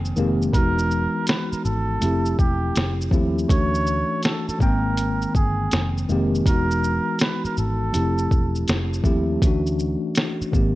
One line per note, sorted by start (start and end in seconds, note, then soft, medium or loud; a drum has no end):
0.00 0.12 F1 medium
0.00 0.10 D#3 medium
0.00 0.11 G#3 medium
0.00 0.11 A#3 medium
0.00 0.11 C4 medium
0.00 0.12 G5 medium
0.05 shaker soft
0.16 0.49 F1 medium
0.16 0.52 D#3 medium
0.16 0.52 G#3 medium
0.16 0.53 A#3 medium
0.16 0.53 C4 medium
0.16 0.54 G4 medium
0.16 shaker soft
0.42 shaker soft
0.53 1.06 E1 loud
0.53 1.96 E3 medium
0.53 1.97 G#3 medium
0.53 1.97 B3 medium
0.53 1.97 D#4 medium
0.53 1.98 F#4 medium
0.53 1.24 A#4 loud
0.53 kick loud
0.53 closed hi-hat medium
0.53 shaker medium
0.79 shaker soft
0.91 shaker soft
1.27 1.54 B4 medium
1.27 snare loud
1.27 closed hi-hat medium
1.27 shaker medium
1.52 1.63 A#4 medium
1.52 muted picked electric bass stroke soft
1.52 shaker soft
1.65 1.97 G#1 medium
1.65 2.35 A4 medium
1.65 shaker soft
2.01 2.34 F1 loud
2.01 3.08 F3 medium
2.01 3.08 A3 medium
2.01 3.09 C4 medium
2.01 3.09 E4 medium
2.01 3.10 G4 medium
2.01 closed hi-hat medium
2.01 shaker medium
2.26 shaker soft
2.39 2.71 E1 medium
2.39 2.96 G4 medium
2.39 kick medium
2.39 shaker soft
2.76 3.08 F1 medium
2.76 snare loud
2.76 closed hi-hat medium
2.76 shaker medium
3.01 shaker soft
3.11 3.44 D#2 medium
3.11 3.47 F3 medium
3.11 3.48 A3 medium
3.11 3.48 C4 medium
3.11 3.49 E4 medium
3.11 3.49 G4 medium
3.11 kick medium
3.11 shaker soft
3.38 shaker soft
3.48 4.02 D2 loud
3.48 4.60 E3 medium
3.48 4.60 A3 medium
3.48 4.61 C#4 medium
3.48 4.61 D4 medium
3.48 4.62 F#4 medium
3.48 4.20 C#5 loud
3.48 kick loud
3.48 closed hi-hat medium
3.48 shaker medium
3.74 shaker soft
3.87 shaker medium
4.23 4.45 A4 medium
4.23 snare loud
4.23 closed hi-hat medium
4.23 shaker medium
4.48 4.60 A4 medium
4.48 muted picked electric bass stroke soft
4.48 shaker soft
4.59 5.24 G#1 loud
4.59 6.02 D#3 medium
4.59 6.03 G#3 medium
4.59 6.03 A#3 medium
4.59 6.04 C4 medium
4.59 5.31 A#4 medium
4.59 6.04 G5 medium
4.59 kick loud
4.59 shaker soft
4.97 closed hi-hat medium
4.97 shaker medium
5.22 shaker soft
5.35 5.67 G1 medium
5.35 5.93 G#4 medium
5.35 kick medium
5.35 shaker soft
5.71 6.04 F1 medium
5.71 snare loud
5.71 closed hi-hat medium
5.71 shaker medium
5.98 shaker soft
6.09 6.41 F1 medium
6.09 6.44 D#3 medium
6.09 6.45 G#3 medium
6.09 6.45 A#3 medium
6.09 6.46 C4 medium
6.09 6.46 G4 medium
6.09 shaker soft
6.35 shaker soft
6.46 6.98 E1 loud
6.46 7.89 E3 medium
6.46 7.89 G#3 medium
6.46 7.89 B3 medium
6.46 7.90 D#4 medium
6.46 7.90 F#4 medium
6.46 7.16 A#4 loud
6.46 kick loud
6.46 closed hi-hat medium
6.46 shaker medium
6.71 shaker soft
6.84 shaker medium
7.19 7.42 B4 medium
7.19 snare loud
7.19 closed hi-hat medium
7.19 shaker medium
7.45 7.56 A#4 medium
7.45 muted picked electric bass stroke soft
7.45 shaker soft
7.57 7.89 G#1 medium
7.57 8.65 A4 medium
7.57 shaker soft
7.92 8.26 F1 loud
7.92 9.00 F3 medium
7.92 9.01 A3 medium
7.92 9.01 C4 medium
7.92 9.01 E4 medium
7.92 9.02 G4 medium
7.92 closed hi-hat medium
7.92 shaker medium
8.18 shaker soft
8.31 8.63 E1 medium
8.31 kick medium
8.31 shaker soft
8.55 shaker soft
8.68 9.00 F1 medium
8.68 snare loud
8.68 closed hi-hat medium
8.68 shaker medium
8.93 shaker soft
9.03 9.36 D#2 medium
9.03 9.40 F3 medium
9.03 9.40 A3 medium
9.03 9.40 C4 medium
9.03 9.41 E4 medium
9.03 9.41 G4 medium
9.03 kick medium
9.03 shaker soft
9.42 9.95 D2 loud
9.42 10.54 E3 medium
9.42 10.54 A3 medium
9.42 10.55 C#4 medium
9.42 10.55 D4 medium
9.42 kick loud
9.42 closed hi-hat medium
9.42 shaker medium
9.47 10.56 F#4 medium
9.66 shaker soft
9.79 shaker soft
10.15 snare loud
10.15 closed hi-hat medium
10.15 shaker medium
10.42 muted picked electric bass stroke soft
10.42 shaker soft
10.52 10.75 G#1 loud
10.52 10.75 D#3 medium
10.52 10.75 G#3 medium
10.52 10.75 A#3 medium
10.52 10.75 C4 medium
10.52 10.75 G4 medium
10.52 kick loud
10.52 shaker soft